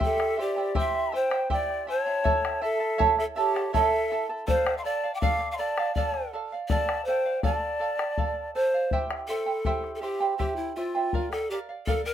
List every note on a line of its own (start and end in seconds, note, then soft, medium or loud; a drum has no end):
0.00 0.37 E4 medium
0.00 0.38 G4 medium
0.00 0.37 C5 medium
0.00 0.36 E5 medium
0.00 0.38 G5 medium
0.00 bombo low medium
0.04 0.42 A4 medium
0.04 0.42 E5 medium
0.20 bombo rim soft
0.38 0.57 E4 medium
0.38 0.79 G4 medium
0.38 0.56 C5 medium
0.38 0.79 D5 medium
0.38 0.57 E5 soft
0.38 0.55 G5 medium
0.56 0.74 E4 soft
0.56 0.74 C5 soft
0.56 0.75 G5 soft
0.75 1.12 E4 medium
0.75 1.13 G4 medium
0.75 1.12 C5 medium
0.75 1.11 E5 medium
0.75 1.16 E5 medium
0.75 1.13 G5 medium
0.75 1.16 C6 medium
0.75 bombo low medium
0.95 bombo rim soft
1.12 1.31 E4 medium
1.12 1.30 C5 medium
1.12 1.51 C5 medium
1.12 1.31 E5 medium
1.12 1.29 G5 medium
1.12 1.51 G5 medium
1.30 1.49 E4 soft
1.30 1.49 C5 soft
1.30 1.49 G5 medium
1.30 bombo rim soft
1.50 1.87 E4 medium
1.50 1.88 G4 medium
1.50 1.87 C5 medium
1.50 1.86 D5 medium
1.50 1.86 E5 medium
1.50 1.87 G5 medium
1.50 1.86 G5 medium
1.50 bombo low medium
1.70 bombo rim soft
1.87 2.06 E4 medium
1.87 2.05 C5 medium
1.87 2.65 C#5 medium
1.87 2.06 E5 medium
1.87 2.05 G5 medium
1.87 2.63 A5 medium
2.06 2.24 E4 soft
2.06 2.25 C5 soft
2.06 2.25 G5 medium
2.24 2.60 E4 medium
2.24 2.61 A4 medium
2.24 2.62 C#5 medium
2.24 2.60 E5 medium
2.24 2.61 A5 medium
2.24 bombo low medium
2.45 bombo rim medium
2.61 2.80 E4 medium
2.61 2.79 A4 medium
2.61 3.19 A4 medium
2.61 2.81 E5 medium
2.61 3.17 E5 medium
2.61 2.78 A5 medium
2.80 2.98 E4 soft
2.80 2.98 A4 soft
2.80 2.98 A5 soft
2.98 3.36 E4 medium
2.98 3.36 A4 medium
2.98 3.36 C#5 medium
2.98 3.35 E5 medium
2.98 3.36 A5 medium
2.98 bombo low medium
3.18 3.25 A4 medium
3.18 3.24 E5 medium
3.18 bombo rim soft
3.36 3.55 E4 medium
3.36 3.71 G4 medium
3.36 3.54 A4 medium
3.36 3.72 C#5 medium
3.36 3.55 E5 medium
3.36 3.53 A5 medium
3.55 3.73 E4 soft
3.55 3.73 A4 soft
3.55 3.73 A5 soft
3.55 bombo rim soft
3.73 4.10 E4 medium
3.73 4.11 A4 medium
3.73 4.26 A4 medium
3.73 4.11 C#5 medium
3.73 4.09 E5 medium
3.73 4.26 E5 medium
3.73 4.11 A5 medium
3.73 bombo low medium
4.11 4.30 E4 medium
4.11 4.29 A4 medium
4.11 4.29 E5 medium
4.11 4.28 A5 medium
4.29 4.46 E4 soft
4.29 4.46 A4 soft
4.29 4.47 A5 medium
4.47 4.83 A4 medium
4.47 4.76 C5 loud
4.47 4.84 D5 medium
4.47 4.84 F5 medium
4.47 4.77 F5 medium
4.47 bombo low medium
4.67 bombo rim medium
4.77 4.86 F5 medium
4.77 4.86 C6 medium
4.84 5.03 A4 medium
4.84 5.13 D5 medium
4.84 5.04 D5 medium
4.84 5.02 F5 medium
4.84 5.15 A5 medium
5.04 5.21 D5 soft
5.04 5.22 F5 medium
5.14 5.22 G5 medium
5.14 5.23 D6 medium
5.21 5.57 A4 medium
5.21 5.58 D5 medium
5.21 5.51 F5 loud
5.21 5.59 F5 medium
5.21 5.56 D6 medium
5.21 bombo low medium
5.41 bombo rim soft
5.51 5.59 F5 medium
5.51 5.61 C6 medium
5.57 5.78 A4 medium
5.57 5.94 D5 medium
5.57 5.78 D5 medium
5.57 5.78 F5 medium
5.57 5.96 A5 medium
5.78 5.96 D5 soft
5.78 5.96 F5 medium
5.78 bombo rim medium
5.95 6.32 A4 medium
5.95 6.30 D5 medium
5.95 6.33 D5 medium
5.95 6.34 F5 medium
5.95 6.31 A5 medium
5.95 bombo low medium
6.14 bombo rim soft
6.33 6.52 A4 medium
6.33 6.52 D5 medium
6.33 6.51 F5 medium
6.52 6.69 D5 soft
6.52 6.70 F5 medium
6.68 7.06 A4 medium
6.68 7.04 D5 medium
6.68 7.07 D5 medium
6.68 7.07 F5 medium
6.68 7.05 A5 medium
6.68 bombo rim soft
6.68 bombo low medium
6.89 bombo rim medium
7.05 7.26 A4 medium
7.05 7.40 C5 medium
7.05 7.26 D5 medium
7.05 7.24 F5 medium
7.05 7.42 G5 medium
7.26 7.42 D5 soft
7.26 7.43 F5 medium
7.43 7.78 A4 medium
7.43 8.51 D5 medium
7.43 7.79 D5 medium
7.43 7.80 F5 medium
7.43 8.52 A5 medium
7.43 bombo rim soft
7.43 bombo low medium
7.79 7.99 A4 medium
7.79 7.98 D5 medium
7.79 7.96 F5 medium
7.97 8.17 D5 soft
7.97 8.17 F5 soft
7.97 bombo rim medium
8.18 8.54 A4 medium
8.18 8.54 D5 medium
8.18 8.55 F5 medium
8.18 bombo low medium
8.55 8.74 A4 medium
8.55 9.05 C5 loud
8.55 8.74 D5 medium
8.55 8.73 F5 medium
8.74 8.92 D5 soft
8.74 8.92 F5 medium
8.91 9.28 E4 medium
8.91 9.29 G4 medium
8.91 9.29 C5 medium
8.91 9.28 E5 medium
8.91 9.29 G5 medium
8.91 bombo low medium
9.11 bombo rim medium
9.28 9.46 E4 medium
9.28 9.91 A4 medium
9.28 9.46 C5 medium
9.28 9.47 E5 medium
9.28 9.45 G5 medium
9.46 9.65 E4 soft
9.46 9.65 C5 soft
9.46 9.65 G5 soft
9.65 10.01 E4 medium
9.65 10.03 G4 medium
9.65 10.02 C5 medium
9.65 10.00 E5 medium
9.65 10.02 G5 medium
9.65 bombo low medium
9.84 bombo rim soft
9.95 10.03 A4 medium
10.02 10.21 E4 medium
10.02 10.37 G4 medium
10.02 10.20 C5 medium
10.02 10.21 E5 medium
10.02 10.19 G5 medium
10.20 10.38 E4 soft
10.20 10.38 C5 soft
10.20 10.39 G5 medium
10.38 10.76 E4 medium
10.38 10.58 G4 medium
10.38 10.76 G4 medium
10.38 10.76 C5 medium
10.38 10.75 E5 medium
10.38 10.77 G5 medium
10.38 bombo rim soft
10.38 bombo low medium
10.56 10.75 E4 medium
10.75 10.95 E4 soft
10.75 11.33 F4 medium
10.75 10.94 C5 medium
10.75 10.95 E5 medium
10.75 10.94 G5 medium
10.95 11.13 E4 soft
10.95 11.14 C5 soft
10.95 11.13 G5 medium
11.13 11.50 A#4 medium
11.13 11.51 D5 medium
11.13 11.51 F5 medium
11.13 bombo low medium
11.31 11.50 A4 medium
11.31 bombo rim soft
11.50 11.58 G4 medium
11.50 11.69 A#4 medium
11.50 11.69 D5 medium
11.50 11.68 F5 medium
11.69 11.86 D5 soft
11.69 11.87 F5 soft
11.86 12.04 A4 medium
11.86 12.14 A#4 medium
11.86 12.14 D5 medium
11.86 12.14 F5 medium
11.86 bombo low medium
12.05 12.14 A#4 medium
12.05 bombo rim soft